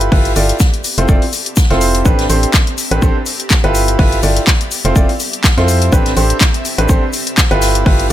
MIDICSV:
0, 0, Header, 1, 5, 480
1, 0, Start_track
1, 0, Key_signature, 0, "minor"
1, 0, Tempo, 483871
1, 118, Time_signature, 4, 2, 24, 8
1, 8060, End_track
2, 0, Start_track
2, 0, Title_t, "Ambient pad"
2, 0, Program_c, 0, 92
2, 0, Note_on_c, 0, 83, 71
2, 61, Note_on_c, 0, 67, 77
2, 272, Note_off_c, 0, 83, 0
2, 315, Note_on_c, 0, 76, 72
2, 315, Note_on_c, 0, 81, 77
2, 839, Note_on_c, 0, 60, 74
2, 2037, Note_off_c, 0, 67, 0
2, 2233, Note_on_c, 0, 67, 84
2, 2471, Note_on_c, 0, 83, 79
2, 2678, Note_off_c, 0, 81, 0
2, 2715, Note_off_c, 0, 76, 0
2, 3718, Note_off_c, 0, 60, 0
2, 3811, Note_off_c, 0, 67, 0
2, 3823, Note_on_c, 0, 67, 86
2, 4112, Note_off_c, 0, 83, 0
2, 4125, Note_on_c, 0, 81, 71
2, 4155, Note_on_c, 0, 76, 86
2, 4678, Note_on_c, 0, 60, 84
2, 5876, Note_off_c, 0, 67, 0
2, 6065, Note_on_c, 0, 67, 73
2, 6262, Note_on_c, 0, 74, 80
2, 6555, Note_off_c, 0, 76, 0
2, 6555, Note_off_c, 0, 81, 0
2, 7558, Note_off_c, 0, 60, 0
2, 7951, Note_off_c, 0, 74, 0
2, 7952, Note_off_c, 0, 67, 0
2, 8060, End_track
3, 0, Start_track
3, 0, Title_t, "Upright piano"
3, 0, Program_c, 1, 0
3, 116, Note_on_c, 1, 64, 73
3, 116, Note_on_c, 1, 65, 69
3, 116, Note_on_c, 1, 69, 69
3, 117, Note_on_c, 1, 67, 69
3, 117, Note_on_c, 1, 71, 83
3, 301, Note_off_c, 1, 64, 0
3, 302, Note_off_c, 1, 65, 0
3, 302, Note_off_c, 1, 67, 0
3, 302, Note_off_c, 1, 69, 0
3, 302, Note_off_c, 1, 71, 0
3, 357, Note_on_c, 1, 64, 69
3, 357, Note_on_c, 1, 65, 64
3, 357, Note_on_c, 1, 74, 75
3, 358, Note_on_c, 1, 67, 62
3, 358, Note_on_c, 1, 69, 62
3, 542, Note_off_c, 1, 64, 0
3, 542, Note_off_c, 1, 65, 0
3, 542, Note_off_c, 1, 67, 0
3, 542, Note_off_c, 1, 69, 0
3, 542, Note_off_c, 1, 74, 0
3, 971, Note_on_c, 1, 60, 70
3, 971, Note_on_c, 1, 64, 66
3, 971, Note_on_c, 1, 65, 65
3, 971, Note_on_c, 1, 69, 65
3, 971, Note_on_c, 1, 72, 80
3, 1062, Note_off_c, 1, 60, 0
3, 1062, Note_off_c, 1, 64, 0
3, 1062, Note_off_c, 1, 65, 0
3, 1062, Note_off_c, 1, 69, 0
3, 1062, Note_off_c, 1, 72, 0
3, 1077, Note_on_c, 1, 60, 81
3, 1077, Note_on_c, 1, 64, 75
3, 1077, Note_on_c, 1, 65, 75
3, 1077, Note_on_c, 1, 69, 74
3, 1077, Note_on_c, 1, 74, 89
3, 1201, Note_off_c, 1, 60, 0
3, 1201, Note_off_c, 1, 64, 0
3, 1201, Note_off_c, 1, 65, 0
3, 1201, Note_off_c, 1, 69, 0
3, 1201, Note_off_c, 1, 74, 0
3, 1690, Note_on_c, 1, 60, 81
3, 1690, Note_on_c, 1, 64, 75
3, 1690, Note_on_c, 1, 69, 73
3, 1690, Note_on_c, 1, 72, 88
3, 1691, Note_on_c, 1, 65, 76
3, 2012, Note_off_c, 1, 60, 0
3, 2012, Note_off_c, 1, 64, 0
3, 2012, Note_off_c, 1, 65, 0
3, 2012, Note_off_c, 1, 69, 0
3, 2012, Note_off_c, 1, 72, 0
3, 2037, Note_on_c, 1, 60, 76
3, 2037, Note_on_c, 1, 62, 69
3, 2037, Note_on_c, 1, 67, 69
3, 2037, Note_on_c, 1, 69, 69
3, 2037, Note_on_c, 1, 71, 85
3, 2222, Note_off_c, 1, 60, 0
3, 2222, Note_off_c, 1, 62, 0
3, 2222, Note_off_c, 1, 67, 0
3, 2222, Note_off_c, 1, 69, 0
3, 2222, Note_off_c, 1, 71, 0
3, 2277, Note_on_c, 1, 60, 70
3, 2277, Note_on_c, 1, 62, 63
3, 2277, Note_on_c, 1, 67, 64
3, 2277, Note_on_c, 1, 72, 76
3, 2278, Note_on_c, 1, 69, 62
3, 2462, Note_off_c, 1, 60, 0
3, 2462, Note_off_c, 1, 62, 0
3, 2462, Note_off_c, 1, 67, 0
3, 2462, Note_off_c, 1, 69, 0
3, 2462, Note_off_c, 1, 72, 0
3, 2891, Note_on_c, 1, 60, 72
3, 2891, Note_on_c, 1, 62, 64
3, 2891, Note_on_c, 1, 67, 65
3, 2891, Note_on_c, 1, 69, 66
3, 2891, Note_on_c, 1, 71, 81
3, 2982, Note_off_c, 1, 60, 0
3, 2982, Note_off_c, 1, 62, 0
3, 2982, Note_off_c, 1, 67, 0
3, 2982, Note_off_c, 1, 69, 0
3, 2982, Note_off_c, 1, 71, 0
3, 2997, Note_on_c, 1, 60, 83
3, 2997, Note_on_c, 1, 62, 76
3, 2997, Note_on_c, 1, 67, 77
3, 2997, Note_on_c, 1, 69, 76
3, 2997, Note_on_c, 1, 72, 89
3, 3121, Note_off_c, 1, 60, 0
3, 3121, Note_off_c, 1, 62, 0
3, 3121, Note_off_c, 1, 67, 0
3, 3121, Note_off_c, 1, 69, 0
3, 3121, Note_off_c, 1, 72, 0
3, 3610, Note_on_c, 1, 64, 82
3, 3610, Note_on_c, 1, 65, 76
3, 3610, Note_on_c, 1, 67, 75
3, 3610, Note_on_c, 1, 69, 76
3, 3610, Note_on_c, 1, 71, 89
3, 3932, Note_off_c, 1, 64, 0
3, 3932, Note_off_c, 1, 65, 0
3, 3932, Note_off_c, 1, 67, 0
3, 3932, Note_off_c, 1, 69, 0
3, 3932, Note_off_c, 1, 71, 0
3, 3956, Note_on_c, 1, 64, 75
3, 3956, Note_on_c, 1, 65, 69
3, 3956, Note_on_c, 1, 67, 71
3, 3956, Note_on_c, 1, 69, 69
3, 3956, Note_on_c, 1, 71, 85
3, 4141, Note_off_c, 1, 64, 0
3, 4141, Note_off_c, 1, 67, 0
3, 4142, Note_off_c, 1, 65, 0
3, 4142, Note_off_c, 1, 69, 0
3, 4142, Note_off_c, 1, 71, 0
3, 4196, Note_on_c, 1, 64, 69
3, 4196, Note_on_c, 1, 69, 63
3, 4197, Note_on_c, 1, 65, 64
3, 4197, Note_on_c, 1, 67, 61
3, 4197, Note_on_c, 1, 74, 77
3, 4382, Note_off_c, 1, 64, 0
3, 4382, Note_off_c, 1, 65, 0
3, 4382, Note_off_c, 1, 67, 0
3, 4382, Note_off_c, 1, 69, 0
3, 4382, Note_off_c, 1, 74, 0
3, 4810, Note_on_c, 1, 60, 74
3, 4810, Note_on_c, 1, 64, 68
3, 4810, Note_on_c, 1, 65, 65
3, 4810, Note_on_c, 1, 69, 66
3, 4810, Note_on_c, 1, 72, 80
3, 4901, Note_off_c, 1, 60, 0
3, 4901, Note_off_c, 1, 64, 0
3, 4901, Note_off_c, 1, 65, 0
3, 4901, Note_off_c, 1, 69, 0
3, 4901, Note_off_c, 1, 72, 0
3, 4916, Note_on_c, 1, 60, 82
3, 4916, Note_on_c, 1, 64, 78
3, 4916, Note_on_c, 1, 69, 76
3, 4916, Note_on_c, 1, 74, 92
3, 4917, Note_on_c, 1, 65, 74
3, 5040, Note_off_c, 1, 60, 0
3, 5040, Note_off_c, 1, 64, 0
3, 5040, Note_off_c, 1, 69, 0
3, 5040, Note_off_c, 1, 74, 0
3, 5041, Note_off_c, 1, 65, 0
3, 5531, Note_on_c, 1, 60, 82
3, 5531, Note_on_c, 1, 64, 77
3, 5531, Note_on_c, 1, 65, 75
3, 5531, Note_on_c, 1, 69, 78
3, 5531, Note_on_c, 1, 72, 93
3, 5852, Note_off_c, 1, 60, 0
3, 5852, Note_off_c, 1, 64, 0
3, 5852, Note_off_c, 1, 65, 0
3, 5852, Note_off_c, 1, 69, 0
3, 5852, Note_off_c, 1, 72, 0
3, 5876, Note_on_c, 1, 67, 70
3, 5877, Note_on_c, 1, 60, 79
3, 5877, Note_on_c, 1, 62, 69
3, 5877, Note_on_c, 1, 69, 70
3, 5877, Note_on_c, 1, 71, 85
3, 6062, Note_off_c, 1, 60, 0
3, 6062, Note_off_c, 1, 62, 0
3, 6062, Note_off_c, 1, 67, 0
3, 6062, Note_off_c, 1, 69, 0
3, 6062, Note_off_c, 1, 71, 0
3, 6118, Note_on_c, 1, 60, 69
3, 6118, Note_on_c, 1, 62, 65
3, 6118, Note_on_c, 1, 67, 64
3, 6118, Note_on_c, 1, 69, 65
3, 6118, Note_on_c, 1, 72, 79
3, 6302, Note_off_c, 1, 60, 0
3, 6302, Note_off_c, 1, 62, 0
3, 6302, Note_off_c, 1, 67, 0
3, 6302, Note_off_c, 1, 69, 0
3, 6302, Note_off_c, 1, 72, 0
3, 6729, Note_on_c, 1, 60, 74
3, 6729, Note_on_c, 1, 71, 83
3, 6730, Note_on_c, 1, 62, 68
3, 6730, Note_on_c, 1, 67, 68
3, 6730, Note_on_c, 1, 69, 68
3, 6821, Note_off_c, 1, 60, 0
3, 6821, Note_off_c, 1, 62, 0
3, 6821, Note_off_c, 1, 67, 0
3, 6821, Note_off_c, 1, 69, 0
3, 6821, Note_off_c, 1, 71, 0
3, 6836, Note_on_c, 1, 60, 83
3, 6836, Note_on_c, 1, 69, 75
3, 6837, Note_on_c, 1, 62, 79
3, 6837, Note_on_c, 1, 67, 76
3, 6837, Note_on_c, 1, 72, 92
3, 6960, Note_off_c, 1, 60, 0
3, 6960, Note_off_c, 1, 69, 0
3, 6961, Note_off_c, 1, 62, 0
3, 6961, Note_off_c, 1, 67, 0
3, 6961, Note_off_c, 1, 72, 0
3, 7449, Note_on_c, 1, 65, 76
3, 7449, Note_on_c, 1, 67, 77
3, 7449, Note_on_c, 1, 69, 77
3, 7449, Note_on_c, 1, 71, 93
3, 7450, Note_on_c, 1, 64, 82
3, 7771, Note_off_c, 1, 64, 0
3, 7771, Note_off_c, 1, 65, 0
3, 7771, Note_off_c, 1, 67, 0
3, 7771, Note_off_c, 1, 69, 0
3, 7771, Note_off_c, 1, 71, 0
3, 7796, Note_on_c, 1, 64, 77
3, 7797, Note_on_c, 1, 65, 71
3, 7797, Note_on_c, 1, 67, 71
3, 7797, Note_on_c, 1, 69, 70
3, 7797, Note_on_c, 1, 71, 85
3, 7982, Note_off_c, 1, 64, 0
3, 7982, Note_off_c, 1, 65, 0
3, 7982, Note_off_c, 1, 67, 0
3, 7982, Note_off_c, 1, 69, 0
3, 7982, Note_off_c, 1, 71, 0
3, 8060, End_track
4, 0, Start_track
4, 0, Title_t, "FM bass"
4, 0, Program_c, 2, 39
4, 118, Note_on_c, 2, 31, 96
4, 336, Note_off_c, 2, 31, 0
4, 358, Note_on_c, 2, 31, 91
4, 521, Note_off_c, 2, 31, 0
4, 971, Note_on_c, 2, 29, 91
4, 1056, Note_off_c, 2, 29, 0
4, 1078, Note_on_c, 2, 29, 91
4, 1175, Note_off_c, 2, 29, 0
4, 1691, Note_on_c, 2, 29, 94
4, 2016, Note_off_c, 2, 29, 0
4, 2038, Note_on_c, 2, 33, 94
4, 2257, Note_off_c, 2, 33, 0
4, 2276, Note_on_c, 2, 33, 93
4, 2440, Note_off_c, 2, 33, 0
4, 2890, Note_on_c, 2, 33, 90
4, 2976, Note_off_c, 2, 33, 0
4, 2997, Note_on_c, 2, 33, 92
4, 3094, Note_off_c, 2, 33, 0
4, 3610, Note_on_c, 2, 31, 95
4, 3936, Note_off_c, 2, 31, 0
4, 3957, Note_on_c, 2, 31, 94
4, 4176, Note_off_c, 2, 31, 0
4, 4197, Note_on_c, 2, 31, 94
4, 4360, Note_off_c, 2, 31, 0
4, 4810, Note_on_c, 2, 29, 90
4, 4896, Note_off_c, 2, 29, 0
4, 4917, Note_on_c, 2, 29, 92
4, 5014, Note_off_c, 2, 29, 0
4, 5530, Note_on_c, 2, 41, 96
4, 5856, Note_off_c, 2, 41, 0
4, 5877, Note_on_c, 2, 33, 96
4, 6096, Note_off_c, 2, 33, 0
4, 6117, Note_on_c, 2, 33, 92
4, 6281, Note_off_c, 2, 33, 0
4, 6731, Note_on_c, 2, 33, 89
4, 6816, Note_off_c, 2, 33, 0
4, 6838, Note_on_c, 2, 33, 93
4, 6934, Note_off_c, 2, 33, 0
4, 7451, Note_on_c, 2, 31, 94
4, 7776, Note_off_c, 2, 31, 0
4, 7798, Note_on_c, 2, 31, 92
4, 8016, Note_off_c, 2, 31, 0
4, 8060, End_track
5, 0, Start_track
5, 0, Title_t, "Drums"
5, 10, Note_on_c, 9, 42, 59
5, 110, Note_off_c, 9, 42, 0
5, 118, Note_on_c, 9, 36, 113
5, 118, Note_on_c, 9, 46, 79
5, 217, Note_off_c, 9, 36, 0
5, 217, Note_off_c, 9, 46, 0
5, 250, Note_on_c, 9, 42, 46
5, 349, Note_off_c, 9, 42, 0
5, 357, Note_on_c, 9, 46, 101
5, 358, Note_on_c, 9, 82, 60
5, 456, Note_off_c, 9, 46, 0
5, 457, Note_off_c, 9, 82, 0
5, 490, Note_on_c, 9, 42, 57
5, 588, Note_on_c, 9, 38, 103
5, 589, Note_off_c, 9, 42, 0
5, 592, Note_on_c, 9, 82, 88
5, 598, Note_on_c, 9, 36, 114
5, 687, Note_off_c, 9, 38, 0
5, 691, Note_off_c, 9, 82, 0
5, 697, Note_off_c, 9, 36, 0
5, 730, Note_on_c, 9, 42, 44
5, 829, Note_off_c, 9, 42, 0
5, 835, Note_on_c, 9, 82, 62
5, 836, Note_on_c, 9, 46, 102
5, 935, Note_off_c, 9, 46, 0
5, 935, Note_off_c, 9, 82, 0
5, 971, Note_on_c, 9, 42, 57
5, 1070, Note_off_c, 9, 42, 0
5, 1075, Note_on_c, 9, 82, 78
5, 1078, Note_on_c, 9, 36, 117
5, 1174, Note_off_c, 9, 82, 0
5, 1177, Note_off_c, 9, 36, 0
5, 1211, Note_on_c, 9, 46, 57
5, 1310, Note_off_c, 9, 46, 0
5, 1317, Note_on_c, 9, 46, 100
5, 1317, Note_on_c, 9, 82, 63
5, 1416, Note_off_c, 9, 46, 0
5, 1416, Note_off_c, 9, 82, 0
5, 1450, Note_on_c, 9, 42, 58
5, 1550, Note_off_c, 9, 42, 0
5, 1550, Note_on_c, 9, 82, 86
5, 1556, Note_on_c, 9, 38, 118
5, 1558, Note_on_c, 9, 36, 110
5, 1649, Note_off_c, 9, 82, 0
5, 1655, Note_off_c, 9, 38, 0
5, 1657, Note_off_c, 9, 36, 0
5, 1691, Note_on_c, 9, 42, 32
5, 1695, Note_on_c, 9, 38, 48
5, 1790, Note_off_c, 9, 42, 0
5, 1794, Note_off_c, 9, 38, 0
5, 1796, Note_on_c, 9, 82, 59
5, 1797, Note_on_c, 9, 46, 98
5, 1895, Note_off_c, 9, 82, 0
5, 1896, Note_off_c, 9, 46, 0
5, 1931, Note_on_c, 9, 42, 57
5, 1932, Note_off_c, 9, 42, 0
5, 1932, Note_on_c, 9, 42, 38
5, 2031, Note_off_c, 9, 42, 0
5, 2038, Note_on_c, 9, 36, 114
5, 2038, Note_on_c, 9, 82, 75
5, 2137, Note_off_c, 9, 36, 0
5, 2138, Note_off_c, 9, 82, 0
5, 2170, Note_on_c, 9, 42, 47
5, 2175, Note_on_c, 9, 38, 52
5, 2270, Note_off_c, 9, 42, 0
5, 2274, Note_off_c, 9, 38, 0
5, 2277, Note_on_c, 9, 46, 98
5, 2281, Note_on_c, 9, 82, 67
5, 2376, Note_off_c, 9, 46, 0
5, 2380, Note_off_c, 9, 82, 0
5, 2411, Note_on_c, 9, 42, 57
5, 2507, Note_on_c, 9, 38, 101
5, 2510, Note_off_c, 9, 42, 0
5, 2514, Note_on_c, 9, 82, 77
5, 2518, Note_on_c, 9, 36, 112
5, 2520, Note_on_c, 9, 39, 105
5, 2606, Note_off_c, 9, 38, 0
5, 2613, Note_off_c, 9, 82, 0
5, 2617, Note_off_c, 9, 36, 0
5, 2619, Note_off_c, 9, 39, 0
5, 2651, Note_on_c, 9, 42, 47
5, 2750, Note_off_c, 9, 42, 0
5, 2756, Note_on_c, 9, 46, 98
5, 2757, Note_on_c, 9, 82, 58
5, 2855, Note_off_c, 9, 46, 0
5, 2856, Note_off_c, 9, 82, 0
5, 2890, Note_on_c, 9, 42, 57
5, 2989, Note_off_c, 9, 42, 0
5, 2998, Note_on_c, 9, 36, 112
5, 3000, Note_on_c, 9, 82, 84
5, 3097, Note_off_c, 9, 36, 0
5, 3099, Note_off_c, 9, 82, 0
5, 3234, Note_on_c, 9, 82, 56
5, 3236, Note_on_c, 9, 46, 97
5, 3333, Note_off_c, 9, 82, 0
5, 3335, Note_off_c, 9, 46, 0
5, 3370, Note_on_c, 9, 42, 58
5, 3468, Note_on_c, 9, 38, 110
5, 3470, Note_off_c, 9, 42, 0
5, 3472, Note_on_c, 9, 82, 77
5, 3478, Note_on_c, 9, 36, 107
5, 3479, Note_on_c, 9, 39, 104
5, 3567, Note_off_c, 9, 38, 0
5, 3571, Note_off_c, 9, 82, 0
5, 3577, Note_off_c, 9, 36, 0
5, 3578, Note_off_c, 9, 39, 0
5, 3610, Note_on_c, 9, 42, 33
5, 3709, Note_off_c, 9, 42, 0
5, 3717, Note_on_c, 9, 46, 97
5, 3718, Note_on_c, 9, 82, 66
5, 3816, Note_off_c, 9, 46, 0
5, 3818, Note_off_c, 9, 82, 0
5, 3851, Note_on_c, 9, 42, 59
5, 3950, Note_off_c, 9, 42, 0
5, 3956, Note_on_c, 9, 46, 78
5, 3958, Note_on_c, 9, 36, 106
5, 4055, Note_off_c, 9, 46, 0
5, 4057, Note_off_c, 9, 36, 0
5, 4091, Note_on_c, 9, 42, 47
5, 4190, Note_off_c, 9, 42, 0
5, 4194, Note_on_c, 9, 82, 59
5, 4197, Note_on_c, 9, 46, 92
5, 4293, Note_off_c, 9, 82, 0
5, 4296, Note_off_c, 9, 46, 0
5, 4330, Note_on_c, 9, 42, 61
5, 4430, Note_off_c, 9, 42, 0
5, 4438, Note_on_c, 9, 36, 109
5, 4438, Note_on_c, 9, 38, 97
5, 4438, Note_on_c, 9, 82, 80
5, 4440, Note_on_c, 9, 39, 106
5, 4537, Note_off_c, 9, 36, 0
5, 4537, Note_off_c, 9, 38, 0
5, 4537, Note_off_c, 9, 82, 0
5, 4539, Note_off_c, 9, 39, 0
5, 4571, Note_on_c, 9, 42, 48
5, 4670, Note_off_c, 9, 42, 0
5, 4675, Note_on_c, 9, 82, 67
5, 4677, Note_on_c, 9, 46, 96
5, 4774, Note_off_c, 9, 82, 0
5, 4776, Note_off_c, 9, 46, 0
5, 4811, Note_on_c, 9, 42, 59
5, 4910, Note_off_c, 9, 42, 0
5, 4918, Note_on_c, 9, 36, 110
5, 4921, Note_on_c, 9, 82, 83
5, 5017, Note_off_c, 9, 36, 0
5, 5020, Note_off_c, 9, 82, 0
5, 5051, Note_on_c, 9, 46, 56
5, 5150, Note_off_c, 9, 46, 0
5, 5155, Note_on_c, 9, 82, 62
5, 5157, Note_on_c, 9, 46, 98
5, 5254, Note_off_c, 9, 82, 0
5, 5256, Note_off_c, 9, 46, 0
5, 5291, Note_on_c, 9, 42, 59
5, 5390, Note_off_c, 9, 42, 0
5, 5398, Note_on_c, 9, 36, 104
5, 5398, Note_on_c, 9, 82, 78
5, 5399, Note_on_c, 9, 39, 108
5, 5404, Note_on_c, 9, 38, 98
5, 5497, Note_off_c, 9, 36, 0
5, 5498, Note_off_c, 9, 39, 0
5, 5498, Note_off_c, 9, 82, 0
5, 5503, Note_off_c, 9, 38, 0
5, 5529, Note_on_c, 9, 38, 46
5, 5531, Note_on_c, 9, 42, 33
5, 5629, Note_off_c, 9, 38, 0
5, 5630, Note_off_c, 9, 42, 0
5, 5637, Note_on_c, 9, 46, 94
5, 5640, Note_on_c, 9, 82, 66
5, 5736, Note_off_c, 9, 46, 0
5, 5740, Note_off_c, 9, 82, 0
5, 5770, Note_on_c, 9, 42, 60
5, 5775, Note_off_c, 9, 42, 0
5, 5775, Note_on_c, 9, 42, 42
5, 5874, Note_off_c, 9, 42, 0
5, 5878, Note_on_c, 9, 36, 112
5, 5879, Note_on_c, 9, 82, 81
5, 5977, Note_off_c, 9, 36, 0
5, 5979, Note_off_c, 9, 82, 0
5, 6010, Note_on_c, 9, 38, 47
5, 6011, Note_on_c, 9, 42, 50
5, 6110, Note_off_c, 9, 38, 0
5, 6110, Note_off_c, 9, 42, 0
5, 6117, Note_on_c, 9, 46, 93
5, 6118, Note_on_c, 9, 82, 67
5, 6216, Note_off_c, 9, 46, 0
5, 6217, Note_off_c, 9, 82, 0
5, 6250, Note_on_c, 9, 42, 63
5, 6350, Note_off_c, 9, 42, 0
5, 6353, Note_on_c, 9, 82, 78
5, 6356, Note_on_c, 9, 38, 102
5, 6358, Note_on_c, 9, 36, 108
5, 6359, Note_on_c, 9, 39, 111
5, 6452, Note_off_c, 9, 82, 0
5, 6455, Note_off_c, 9, 38, 0
5, 6457, Note_off_c, 9, 36, 0
5, 6458, Note_off_c, 9, 39, 0
5, 6490, Note_on_c, 9, 42, 51
5, 6590, Note_off_c, 9, 42, 0
5, 6596, Note_on_c, 9, 46, 92
5, 6599, Note_on_c, 9, 82, 62
5, 6696, Note_off_c, 9, 46, 0
5, 6698, Note_off_c, 9, 82, 0
5, 6730, Note_on_c, 9, 42, 64
5, 6829, Note_off_c, 9, 42, 0
5, 6834, Note_on_c, 9, 82, 83
5, 6838, Note_on_c, 9, 36, 108
5, 6933, Note_off_c, 9, 82, 0
5, 6937, Note_off_c, 9, 36, 0
5, 7072, Note_on_c, 9, 82, 59
5, 7077, Note_on_c, 9, 46, 95
5, 7171, Note_off_c, 9, 82, 0
5, 7176, Note_off_c, 9, 46, 0
5, 7211, Note_on_c, 9, 42, 64
5, 7310, Note_off_c, 9, 42, 0
5, 7316, Note_on_c, 9, 82, 87
5, 7318, Note_on_c, 9, 36, 106
5, 7319, Note_on_c, 9, 39, 112
5, 7322, Note_on_c, 9, 38, 111
5, 7416, Note_off_c, 9, 82, 0
5, 7417, Note_off_c, 9, 36, 0
5, 7418, Note_off_c, 9, 39, 0
5, 7421, Note_off_c, 9, 38, 0
5, 7450, Note_on_c, 9, 42, 36
5, 7550, Note_off_c, 9, 42, 0
5, 7551, Note_on_c, 9, 38, 90
5, 7557, Note_on_c, 9, 46, 94
5, 7558, Note_on_c, 9, 82, 77
5, 7650, Note_off_c, 9, 38, 0
5, 7656, Note_off_c, 9, 46, 0
5, 7658, Note_off_c, 9, 82, 0
5, 7691, Note_on_c, 9, 42, 63
5, 7790, Note_off_c, 9, 42, 0
5, 7798, Note_on_c, 9, 36, 112
5, 7801, Note_on_c, 9, 46, 74
5, 7897, Note_off_c, 9, 36, 0
5, 7901, Note_off_c, 9, 46, 0
5, 7931, Note_on_c, 9, 42, 50
5, 8030, Note_off_c, 9, 42, 0
5, 8060, End_track
0, 0, End_of_file